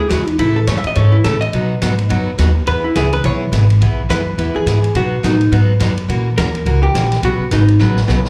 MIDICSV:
0, 0, Header, 1, 6, 480
1, 0, Start_track
1, 0, Key_signature, 4, "major"
1, 0, Tempo, 284765
1, 661, Time_signature, 4, 2, 24, 8
1, 13977, End_track
2, 0, Start_track
2, 0, Title_t, "Hollow-body jazz guitar"
2, 0, Program_c, 0, 26
2, 0, Note_on_c, 0, 68, 91
2, 170, Note_off_c, 0, 68, 0
2, 170, Note_on_c, 0, 66, 72
2, 443, Note_off_c, 0, 66, 0
2, 443, Note_on_c, 0, 63, 85
2, 642, Note_off_c, 0, 63, 0
2, 663, Note_on_c, 0, 64, 70
2, 941, Note_off_c, 0, 64, 0
2, 947, Note_on_c, 0, 69, 83
2, 1135, Note_off_c, 0, 69, 0
2, 1136, Note_on_c, 0, 73, 83
2, 1301, Note_off_c, 0, 73, 0
2, 1301, Note_on_c, 0, 76, 98
2, 1457, Note_off_c, 0, 76, 0
2, 1467, Note_on_c, 0, 75, 86
2, 1614, Note_off_c, 0, 75, 0
2, 1621, Note_on_c, 0, 73, 88
2, 1890, Note_on_c, 0, 64, 53
2, 1901, Note_off_c, 0, 73, 0
2, 2086, Note_off_c, 0, 64, 0
2, 2096, Note_on_c, 0, 69, 83
2, 2373, Note_on_c, 0, 75, 94
2, 2378, Note_off_c, 0, 69, 0
2, 3468, Note_off_c, 0, 75, 0
2, 4510, Note_on_c, 0, 71, 84
2, 4786, Note_off_c, 0, 71, 0
2, 4791, Note_on_c, 0, 64, 54
2, 4978, Note_off_c, 0, 64, 0
2, 4996, Note_on_c, 0, 68, 80
2, 5269, Note_off_c, 0, 68, 0
2, 5283, Note_on_c, 0, 71, 96
2, 5464, Note_off_c, 0, 71, 0
2, 5487, Note_on_c, 0, 73, 96
2, 5652, Note_off_c, 0, 73, 0
2, 6918, Note_on_c, 0, 71, 77
2, 7625, Note_off_c, 0, 71, 0
2, 7682, Note_on_c, 0, 68, 90
2, 8302, Note_off_c, 0, 68, 0
2, 8367, Note_on_c, 0, 66, 83
2, 8803, Note_off_c, 0, 66, 0
2, 8848, Note_on_c, 0, 63, 63
2, 9283, Note_off_c, 0, 63, 0
2, 10749, Note_on_c, 0, 70, 91
2, 11459, Note_off_c, 0, 70, 0
2, 11509, Note_on_c, 0, 67, 91
2, 12134, Note_off_c, 0, 67, 0
2, 12215, Note_on_c, 0, 66, 80
2, 12645, Note_off_c, 0, 66, 0
2, 12689, Note_on_c, 0, 63, 65
2, 13121, Note_off_c, 0, 63, 0
2, 13977, End_track
3, 0, Start_track
3, 0, Title_t, "Steel-string acoustic guitar"
3, 0, Program_c, 1, 25
3, 157, Note_on_c, 1, 49, 72
3, 158, Note_on_c, 1, 56, 65
3, 167, Note_on_c, 1, 61, 73
3, 174, Note_on_c, 1, 64, 74
3, 181, Note_on_c, 1, 68, 74
3, 351, Note_off_c, 1, 49, 0
3, 352, Note_off_c, 1, 56, 0
3, 356, Note_off_c, 1, 61, 0
3, 359, Note_off_c, 1, 64, 0
3, 363, Note_off_c, 1, 68, 0
3, 645, Note_on_c, 1, 49, 54
3, 654, Note_on_c, 1, 52, 53
3, 659, Note_on_c, 1, 57, 61
3, 659, Note_on_c, 1, 61, 65
3, 672, Note_on_c, 1, 69, 63
3, 978, Note_off_c, 1, 49, 0
3, 983, Note_off_c, 1, 52, 0
3, 985, Note_off_c, 1, 57, 0
3, 985, Note_off_c, 1, 61, 0
3, 992, Note_off_c, 1, 69, 0
3, 1141, Note_on_c, 1, 49, 78
3, 1145, Note_on_c, 1, 52, 74
3, 1153, Note_on_c, 1, 57, 80
3, 1154, Note_on_c, 1, 61, 79
3, 1159, Note_on_c, 1, 69, 82
3, 1324, Note_off_c, 1, 49, 0
3, 1325, Note_off_c, 1, 52, 0
3, 1330, Note_off_c, 1, 57, 0
3, 1330, Note_off_c, 1, 61, 0
3, 1332, Note_off_c, 1, 69, 0
3, 1612, Note_on_c, 1, 49, 63
3, 1616, Note_on_c, 1, 52, 65
3, 1625, Note_on_c, 1, 57, 62
3, 1631, Note_on_c, 1, 61, 71
3, 1633, Note_on_c, 1, 69, 72
3, 1942, Note_off_c, 1, 49, 0
3, 1945, Note_off_c, 1, 52, 0
3, 1949, Note_off_c, 1, 57, 0
3, 1952, Note_off_c, 1, 61, 0
3, 1953, Note_off_c, 1, 69, 0
3, 2097, Note_on_c, 1, 49, 78
3, 2103, Note_on_c, 1, 52, 69
3, 2112, Note_on_c, 1, 57, 74
3, 2115, Note_on_c, 1, 61, 80
3, 2116, Note_on_c, 1, 69, 75
3, 2282, Note_off_c, 1, 49, 0
3, 2285, Note_off_c, 1, 52, 0
3, 2289, Note_off_c, 1, 57, 0
3, 2291, Note_off_c, 1, 61, 0
3, 2292, Note_off_c, 1, 69, 0
3, 2587, Note_on_c, 1, 47, 60
3, 2595, Note_on_c, 1, 54, 61
3, 2603, Note_on_c, 1, 59, 66
3, 2607, Note_on_c, 1, 63, 66
3, 2608, Note_on_c, 1, 66, 66
3, 2910, Note_off_c, 1, 47, 0
3, 2914, Note_off_c, 1, 54, 0
3, 2918, Note_off_c, 1, 59, 0
3, 2920, Note_off_c, 1, 63, 0
3, 2921, Note_off_c, 1, 66, 0
3, 3061, Note_on_c, 1, 47, 71
3, 3064, Note_on_c, 1, 54, 85
3, 3066, Note_on_c, 1, 59, 87
3, 3077, Note_on_c, 1, 63, 86
3, 3077, Note_on_c, 1, 66, 87
3, 3244, Note_off_c, 1, 47, 0
3, 3245, Note_off_c, 1, 54, 0
3, 3247, Note_off_c, 1, 59, 0
3, 3252, Note_off_c, 1, 63, 0
3, 3252, Note_off_c, 1, 66, 0
3, 3526, Note_on_c, 1, 47, 65
3, 3537, Note_on_c, 1, 54, 61
3, 3539, Note_on_c, 1, 59, 65
3, 3545, Note_on_c, 1, 63, 71
3, 3552, Note_on_c, 1, 66, 71
3, 3860, Note_off_c, 1, 47, 0
3, 3865, Note_off_c, 1, 54, 0
3, 3866, Note_off_c, 1, 59, 0
3, 3869, Note_off_c, 1, 63, 0
3, 3873, Note_off_c, 1, 66, 0
3, 4011, Note_on_c, 1, 47, 74
3, 4017, Note_on_c, 1, 54, 70
3, 4024, Note_on_c, 1, 59, 72
3, 4032, Note_on_c, 1, 66, 83
3, 4033, Note_on_c, 1, 63, 75
3, 4199, Note_off_c, 1, 47, 0
3, 4203, Note_off_c, 1, 54, 0
3, 4206, Note_off_c, 1, 59, 0
3, 4210, Note_off_c, 1, 63, 0
3, 4210, Note_off_c, 1, 66, 0
3, 4500, Note_on_c, 1, 52, 61
3, 4507, Note_on_c, 1, 59, 63
3, 4511, Note_on_c, 1, 64, 68
3, 4522, Note_on_c, 1, 68, 66
3, 4827, Note_off_c, 1, 52, 0
3, 4831, Note_off_c, 1, 59, 0
3, 4832, Note_off_c, 1, 64, 0
3, 4838, Note_off_c, 1, 68, 0
3, 4982, Note_on_c, 1, 52, 76
3, 4993, Note_on_c, 1, 59, 76
3, 5001, Note_on_c, 1, 64, 88
3, 5008, Note_on_c, 1, 68, 82
3, 5165, Note_off_c, 1, 52, 0
3, 5170, Note_off_c, 1, 59, 0
3, 5174, Note_off_c, 1, 64, 0
3, 5178, Note_off_c, 1, 68, 0
3, 5464, Note_on_c, 1, 52, 60
3, 5469, Note_on_c, 1, 59, 70
3, 5479, Note_on_c, 1, 64, 61
3, 5486, Note_on_c, 1, 68, 73
3, 5789, Note_off_c, 1, 52, 0
3, 5792, Note_off_c, 1, 59, 0
3, 5796, Note_off_c, 1, 64, 0
3, 5800, Note_off_c, 1, 68, 0
3, 5939, Note_on_c, 1, 52, 65
3, 5943, Note_on_c, 1, 59, 68
3, 5950, Note_on_c, 1, 64, 76
3, 5962, Note_on_c, 1, 68, 80
3, 6124, Note_off_c, 1, 52, 0
3, 6125, Note_off_c, 1, 59, 0
3, 6129, Note_off_c, 1, 64, 0
3, 6135, Note_off_c, 1, 68, 0
3, 6420, Note_on_c, 1, 52, 59
3, 6425, Note_on_c, 1, 59, 56
3, 6432, Note_on_c, 1, 64, 61
3, 6444, Note_on_c, 1, 68, 65
3, 6747, Note_off_c, 1, 52, 0
3, 6749, Note_off_c, 1, 59, 0
3, 6753, Note_off_c, 1, 64, 0
3, 6759, Note_off_c, 1, 68, 0
3, 6899, Note_on_c, 1, 52, 76
3, 6904, Note_on_c, 1, 59, 80
3, 6914, Note_on_c, 1, 64, 81
3, 6923, Note_on_c, 1, 68, 88
3, 7083, Note_off_c, 1, 52, 0
3, 7086, Note_off_c, 1, 59, 0
3, 7091, Note_off_c, 1, 64, 0
3, 7095, Note_off_c, 1, 68, 0
3, 7384, Note_on_c, 1, 52, 61
3, 7390, Note_on_c, 1, 59, 67
3, 7398, Note_on_c, 1, 64, 67
3, 7403, Note_on_c, 1, 68, 69
3, 7709, Note_off_c, 1, 52, 0
3, 7712, Note_off_c, 1, 59, 0
3, 7716, Note_off_c, 1, 64, 0
3, 7719, Note_off_c, 1, 68, 0
3, 7860, Note_on_c, 1, 52, 64
3, 7873, Note_on_c, 1, 59, 66
3, 7875, Note_on_c, 1, 64, 70
3, 7883, Note_on_c, 1, 68, 79
3, 8044, Note_off_c, 1, 52, 0
3, 8050, Note_off_c, 1, 59, 0
3, 8051, Note_off_c, 1, 64, 0
3, 8055, Note_off_c, 1, 68, 0
3, 8343, Note_on_c, 1, 47, 63
3, 8354, Note_on_c, 1, 54, 59
3, 8354, Note_on_c, 1, 63, 63
3, 8359, Note_on_c, 1, 59, 57
3, 8364, Note_on_c, 1, 66, 62
3, 8668, Note_off_c, 1, 47, 0
3, 8674, Note_off_c, 1, 54, 0
3, 8674, Note_off_c, 1, 63, 0
3, 8676, Note_off_c, 1, 59, 0
3, 8679, Note_off_c, 1, 66, 0
3, 8818, Note_on_c, 1, 47, 76
3, 8823, Note_on_c, 1, 54, 76
3, 8826, Note_on_c, 1, 59, 77
3, 8834, Note_on_c, 1, 63, 74
3, 8837, Note_on_c, 1, 66, 81
3, 9003, Note_off_c, 1, 47, 0
3, 9005, Note_off_c, 1, 54, 0
3, 9007, Note_off_c, 1, 59, 0
3, 9011, Note_off_c, 1, 63, 0
3, 9012, Note_off_c, 1, 66, 0
3, 9300, Note_on_c, 1, 47, 60
3, 9308, Note_on_c, 1, 54, 64
3, 9314, Note_on_c, 1, 59, 73
3, 9318, Note_on_c, 1, 63, 71
3, 9324, Note_on_c, 1, 66, 69
3, 9627, Note_off_c, 1, 47, 0
3, 9631, Note_off_c, 1, 54, 0
3, 9634, Note_off_c, 1, 59, 0
3, 9636, Note_off_c, 1, 63, 0
3, 9639, Note_off_c, 1, 66, 0
3, 9770, Note_on_c, 1, 47, 70
3, 9781, Note_on_c, 1, 59, 66
3, 9783, Note_on_c, 1, 54, 75
3, 9795, Note_on_c, 1, 63, 82
3, 9797, Note_on_c, 1, 66, 76
3, 9958, Note_off_c, 1, 47, 0
3, 9964, Note_off_c, 1, 59, 0
3, 9965, Note_off_c, 1, 54, 0
3, 9971, Note_off_c, 1, 63, 0
3, 9972, Note_off_c, 1, 66, 0
3, 10257, Note_on_c, 1, 52, 55
3, 10268, Note_on_c, 1, 58, 64
3, 10269, Note_on_c, 1, 61, 61
3, 10272, Note_on_c, 1, 66, 59
3, 10275, Note_on_c, 1, 70, 59
3, 10585, Note_off_c, 1, 52, 0
3, 10590, Note_off_c, 1, 58, 0
3, 10591, Note_off_c, 1, 61, 0
3, 10592, Note_off_c, 1, 66, 0
3, 10594, Note_off_c, 1, 70, 0
3, 10744, Note_on_c, 1, 52, 75
3, 10749, Note_on_c, 1, 58, 76
3, 10758, Note_on_c, 1, 61, 81
3, 10764, Note_on_c, 1, 66, 90
3, 10768, Note_on_c, 1, 70, 90
3, 10925, Note_off_c, 1, 52, 0
3, 10928, Note_off_c, 1, 58, 0
3, 10932, Note_off_c, 1, 61, 0
3, 10935, Note_off_c, 1, 66, 0
3, 10937, Note_off_c, 1, 70, 0
3, 11221, Note_on_c, 1, 52, 63
3, 11225, Note_on_c, 1, 58, 62
3, 11233, Note_on_c, 1, 61, 61
3, 11235, Note_on_c, 1, 66, 72
3, 11237, Note_on_c, 1, 70, 74
3, 11546, Note_off_c, 1, 52, 0
3, 11548, Note_off_c, 1, 58, 0
3, 11552, Note_off_c, 1, 61, 0
3, 11553, Note_off_c, 1, 66, 0
3, 11554, Note_off_c, 1, 70, 0
3, 11709, Note_on_c, 1, 52, 68
3, 11717, Note_on_c, 1, 61, 69
3, 11720, Note_on_c, 1, 58, 76
3, 11725, Note_on_c, 1, 70, 77
3, 11726, Note_on_c, 1, 66, 73
3, 11887, Note_off_c, 1, 52, 0
3, 11891, Note_off_c, 1, 61, 0
3, 11892, Note_off_c, 1, 58, 0
3, 11895, Note_off_c, 1, 70, 0
3, 11896, Note_off_c, 1, 66, 0
3, 12179, Note_on_c, 1, 47, 57
3, 12186, Note_on_c, 1, 49, 65
3, 12191, Note_on_c, 1, 54, 62
3, 12199, Note_on_c, 1, 59, 66
3, 12200, Note_on_c, 1, 63, 62
3, 12208, Note_on_c, 1, 71, 61
3, 12505, Note_off_c, 1, 47, 0
3, 12508, Note_off_c, 1, 49, 0
3, 12511, Note_off_c, 1, 54, 0
3, 12515, Note_off_c, 1, 59, 0
3, 12515, Note_off_c, 1, 63, 0
3, 12519, Note_off_c, 1, 71, 0
3, 12660, Note_on_c, 1, 54, 73
3, 12662, Note_on_c, 1, 47, 71
3, 12665, Note_on_c, 1, 49, 76
3, 12666, Note_on_c, 1, 59, 78
3, 12673, Note_on_c, 1, 63, 76
3, 12677, Note_on_c, 1, 71, 90
3, 12842, Note_off_c, 1, 54, 0
3, 12843, Note_off_c, 1, 47, 0
3, 12844, Note_off_c, 1, 49, 0
3, 12845, Note_off_c, 1, 59, 0
3, 12848, Note_off_c, 1, 63, 0
3, 12851, Note_off_c, 1, 71, 0
3, 13136, Note_on_c, 1, 47, 59
3, 13138, Note_on_c, 1, 49, 67
3, 13144, Note_on_c, 1, 54, 60
3, 13149, Note_on_c, 1, 63, 74
3, 13154, Note_on_c, 1, 59, 67
3, 13156, Note_on_c, 1, 71, 73
3, 13462, Note_off_c, 1, 47, 0
3, 13463, Note_off_c, 1, 49, 0
3, 13466, Note_off_c, 1, 54, 0
3, 13469, Note_off_c, 1, 63, 0
3, 13471, Note_off_c, 1, 59, 0
3, 13472, Note_off_c, 1, 71, 0
3, 13613, Note_on_c, 1, 47, 75
3, 13614, Note_on_c, 1, 49, 66
3, 13619, Note_on_c, 1, 54, 71
3, 13623, Note_on_c, 1, 63, 72
3, 13626, Note_on_c, 1, 59, 67
3, 13629, Note_on_c, 1, 71, 74
3, 13798, Note_off_c, 1, 47, 0
3, 13798, Note_off_c, 1, 49, 0
3, 13801, Note_off_c, 1, 54, 0
3, 13803, Note_off_c, 1, 63, 0
3, 13804, Note_off_c, 1, 59, 0
3, 13806, Note_off_c, 1, 71, 0
3, 13977, End_track
4, 0, Start_track
4, 0, Title_t, "Upright bass"
4, 0, Program_c, 2, 32
4, 179, Note_on_c, 2, 40, 87
4, 642, Note_off_c, 2, 40, 0
4, 652, Note_on_c, 2, 45, 86
4, 1123, Note_off_c, 2, 45, 0
4, 1134, Note_on_c, 2, 42, 94
4, 1405, Note_off_c, 2, 42, 0
4, 1622, Note_on_c, 2, 44, 86
4, 2088, Note_off_c, 2, 44, 0
4, 2105, Note_on_c, 2, 45, 90
4, 2570, Note_off_c, 2, 45, 0
4, 2581, Note_on_c, 2, 47, 87
4, 3048, Note_off_c, 2, 47, 0
4, 3066, Note_on_c, 2, 44, 93
4, 3531, Note_off_c, 2, 44, 0
4, 3552, Note_on_c, 2, 42, 86
4, 4014, Note_off_c, 2, 42, 0
4, 4021, Note_on_c, 2, 39, 92
4, 4488, Note_off_c, 2, 39, 0
4, 4506, Note_on_c, 2, 40, 92
4, 4970, Note_off_c, 2, 40, 0
4, 4983, Note_on_c, 2, 37, 89
4, 5449, Note_off_c, 2, 37, 0
4, 5460, Note_on_c, 2, 35, 88
4, 5918, Note_off_c, 2, 35, 0
4, 5928, Note_on_c, 2, 32, 89
4, 6402, Note_off_c, 2, 32, 0
4, 6414, Note_on_c, 2, 35, 80
4, 6884, Note_off_c, 2, 35, 0
4, 6904, Note_on_c, 2, 42, 87
4, 7369, Note_off_c, 2, 42, 0
4, 7381, Note_on_c, 2, 40, 82
4, 7650, Note_off_c, 2, 40, 0
4, 7855, Note_on_c, 2, 44, 86
4, 8325, Note_off_c, 2, 44, 0
4, 8342, Note_on_c, 2, 47, 83
4, 8808, Note_off_c, 2, 47, 0
4, 8827, Note_on_c, 2, 45, 92
4, 9291, Note_off_c, 2, 45, 0
4, 9299, Note_on_c, 2, 44, 85
4, 9767, Note_off_c, 2, 44, 0
4, 9785, Note_on_c, 2, 42, 91
4, 10245, Note_off_c, 2, 42, 0
4, 10255, Note_on_c, 2, 46, 86
4, 10724, Note_off_c, 2, 46, 0
4, 10741, Note_on_c, 2, 39, 89
4, 11207, Note_off_c, 2, 39, 0
4, 11218, Note_on_c, 2, 37, 86
4, 11685, Note_off_c, 2, 37, 0
4, 11702, Note_on_c, 2, 34, 90
4, 12166, Note_off_c, 2, 34, 0
4, 12180, Note_on_c, 2, 35, 85
4, 12447, Note_off_c, 2, 35, 0
4, 12660, Note_on_c, 2, 32, 92
4, 13125, Note_off_c, 2, 32, 0
4, 13142, Note_on_c, 2, 33, 88
4, 13606, Note_off_c, 2, 33, 0
4, 13622, Note_on_c, 2, 35, 86
4, 13977, Note_off_c, 2, 35, 0
4, 13977, End_track
5, 0, Start_track
5, 0, Title_t, "Muted upright bass strokes"
5, 1427, Note_on_c, 9, 29, 40
5, 1595, Note_off_c, 9, 29, 0
5, 7672, Note_on_c, 9, 29, 40
5, 7840, Note_off_c, 9, 29, 0
5, 12458, Note_on_c, 9, 29, 43
5, 12626, Note_off_c, 9, 29, 0
5, 13977, End_track
6, 0, Start_track
6, 0, Title_t, "Drums"
6, 176, Note_on_c, 9, 38, 69
6, 176, Note_on_c, 9, 44, 65
6, 176, Note_on_c, 9, 51, 71
6, 344, Note_off_c, 9, 38, 0
6, 344, Note_off_c, 9, 44, 0
6, 344, Note_off_c, 9, 51, 0
6, 463, Note_on_c, 9, 51, 45
6, 631, Note_off_c, 9, 51, 0
6, 657, Note_on_c, 9, 51, 67
6, 825, Note_off_c, 9, 51, 0
6, 1134, Note_on_c, 9, 38, 71
6, 1134, Note_on_c, 9, 44, 57
6, 1134, Note_on_c, 9, 51, 73
6, 1303, Note_off_c, 9, 38, 0
6, 1303, Note_off_c, 9, 44, 0
6, 1303, Note_off_c, 9, 51, 0
6, 1416, Note_on_c, 9, 51, 49
6, 1584, Note_off_c, 9, 51, 0
6, 1609, Note_on_c, 9, 51, 53
6, 1777, Note_off_c, 9, 51, 0
6, 2095, Note_on_c, 9, 38, 72
6, 2095, Note_on_c, 9, 44, 50
6, 2095, Note_on_c, 9, 51, 67
6, 2264, Note_off_c, 9, 38, 0
6, 2264, Note_off_c, 9, 44, 0
6, 2264, Note_off_c, 9, 51, 0
6, 2393, Note_on_c, 9, 51, 45
6, 2562, Note_off_c, 9, 51, 0
6, 2581, Note_on_c, 9, 51, 56
6, 2750, Note_off_c, 9, 51, 0
6, 3062, Note_on_c, 9, 38, 73
6, 3062, Note_on_c, 9, 44, 66
6, 3062, Note_on_c, 9, 51, 73
6, 3230, Note_off_c, 9, 38, 0
6, 3230, Note_off_c, 9, 44, 0
6, 3230, Note_off_c, 9, 51, 0
6, 3346, Note_on_c, 9, 51, 46
6, 3515, Note_off_c, 9, 51, 0
6, 3543, Note_on_c, 9, 51, 59
6, 3712, Note_off_c, 9, 51, 0
6, 4020, Note_on_c, 9, 38, 73
6, 4020, Note_on_c, 9, 44, 57
6, 4020, Note_on_c, 9, 51, 69
6, 4189, Note_off_c, 9, 38, 0
6, 4189, Note_off_c, 9, 44, 0
6, 4189, Note_off_c, 9, 51, 0
6, 4498, Note_on_c, 9, 51, 69
6, 4666, Note_off_c, 9, 51, 0
6, 4981, Note_on_c, 9, 38, 73
6, 4981, Note_on_c, 9, 44, 55
6, 4981, Note_on_c, 9, 51, 67
6, 5149, Note_off_c, 9, 38, 0
6, 5149, Note_off_c, 9, 44, 0
6, 5149, Note_off_c, 9, 51, 0
6, 5270, Note_on_c, 9, 51, 49
6, 5438, Note_off_c, 9, 51, 0
6, 5460, Note_on_c, 9, 51, 58
6, 5629, Note_off_c, 9, 51, 0
6, 5945, Note_on_c, 9, 38, 74
6, 5945, Note_on_c, 9, 44, 55
6, 5945, Note_on_c, 9, 51, 73
6, 6113, Note_off_c, 9, 38, 0
6, 6113, Note_off_c, 9, 44, 0
6, 6113, Note_off_c, 9, 51, 0
6, 6238, Note_on_c, 9, 51, 50
6, 6407, Note_off_c, 9, 51, 0
6, 6433, Note_on_c, 9, 51, 64
6, 6602, Note_off_c, 9, 51, 0
6, 6912, Note_on_c, 9, 38, 67
6, 6912, Note_on_c, 9, 44, 60
6, 6912, Note_on_c, 9, 51, 66
6, 7081, Note_off_c, 9, 38, 0
6, 7081, Note_off_c, 9, 44, 0
6, 7081, Note_off_c, 9, 51, 0
6, 7391, Note_on_c, 9, 51, 58
6, 7560, Note_off_c, 9, 51, 0
6, 7869, Note_on_c, 9, 38, 65
6, 7869, Note_on_c, 9, 44, 54
6, 7869, Note_on_c, 9, 51, 73
6, 8038, Note_off_c, 9, 38, 0
6, 8038, Note_off_c, 9, 44, 0
6, 8038, Note_off_c, 9, 51, 0
6, 8158, Note_on_c, 9, 51, 47
6, 8326, Note_off_c, 9, 51, 0
6, 8344, Note_on_c, 9, 51, 63
6, 8512, Note_off_c, 9, 51, 0
6, 8834, Note_on_c, 9, 38, 65
6, 8834, Note_on_c, 9, 44, 60
6, 8834, Note_on_c, 9, 51, 68
6, 9003, Note_off_c, 9, 38, 0
6, 9003, Note_off_c, 9, 44, 0
6, 9003, Note_off_c, 9, 51, 0
6, 9115, Note_on_c, 9, 51, 44
6, 9284, Note_off_c, 9, 51, 0
6, 9312, Note_on_c, 9, 51, 58
6, 9481, Note_off_c, 9, 51, 0
6, 9782, Note_on_c, 9, 38, 74
6, 9782, Note_on_c, 9, 44, 60
6, 9782, Note_on_c, 9, 51, 74
6, 9951, Note_off_c, 9, 38, 0
6, 9951, Note_off_c, 9, 44, 0
6, 9951, Note_off_c, 9, 51, 0
6, 10072, Note_on_c, 9, 51, 47
6, 10241, Note_off_c, 9, 51, 0
6, 10275, Note_on_c, 9, 51, 63
6, 10444, Note_off_c, 9, 51, 0
6, 10748, Note_on_c, 9, 38, 72
6, 10748, Note_on_c, 9, 44, 54
6, 10748, Note_on_c, 9, 51, 73
6, 10917, Note_off_c, 9, 38, 0
6, 10917, Note_off_c, 9, 44, 0
6, 10917, Note_off_c, 9, 51, 0
6, 11037, Note_on_c, 9, 51, 45
6, 11206, Note_off_c, 9, 51, 0
6, 11230, Note_on_c, 9, 51, 57
6, 11398, Note_off_c, 9, 51, 0
6, 11716, Note_on_c, 9, 38, 74
6, 11716, Note_on_c, 9, 44, 50
6, 11716, Note_on_c, 9, 51, 74
6, 11884, Note_off_c, 9, 38, 0
6, 11884, Note_off_c, 9, 44, 0
6, 11884, Note_off_c, 9, 51, 0
6, 11997, Note_on_c, 9, 38, 42
6, 11997, Note_on_c, 9, 51, 47
6, 12165, Note_off_c, 9, 38, 0
6, 12165, Note_off_c, 9, 51, 0
6, 12189, Note_on_c, 9, 51, 64
6, 12358, Note_off_c, 9, 51, 0
6, 12662, Note_on_c, 9, 38, 71
6, 12662, Note_on_c, 9, 44, 54
6, 12662, Note_on_c, 9, 51, 66
6, 12831, Note_off_c, 9, 38, 0
6, 12831, Note_off_c, 9, 44, 0
6, 12831, Note_off_c, 9, 51, 0
6, 12952, Note_on_c, 9, 51, 47
6, 13121, Note_off_c, 9, 51, 0
6, 13139, Note_on_c, 9, 38, 46
6, 13308, Note_off_c, 9, 38, 0
6, 13427, Note_on_c, 9, 38, 54
6, 13595, Note_off_c, 9, 38, 0
6, 13633, Note_on_c, 9, 38, 76
6, 13633, Note_on_c, 9, 44, 53
6, 13802, Note_off_c, 9, 38, 0
6, 13802, Note_off_c, 9, 44, 0
6, 13909, Note_on_c, 9, 38, 75
6, 13977, Note_off_c, 9, 38, 0
6, 13977, End_track
0, 0, End_of_file